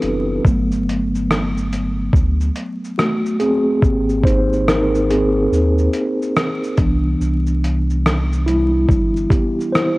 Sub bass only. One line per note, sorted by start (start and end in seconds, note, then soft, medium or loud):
0.03 0.40 F#1 loud
0.45 2.10 G1 loud
2.13 2.50 D2 loud
3.83 5.48 G#1 loud
5.52 5.89 D#2 loud
6.78 7.15 C2 loud
7.21 8.86 C2 loud
8.89 9.26 G1 medium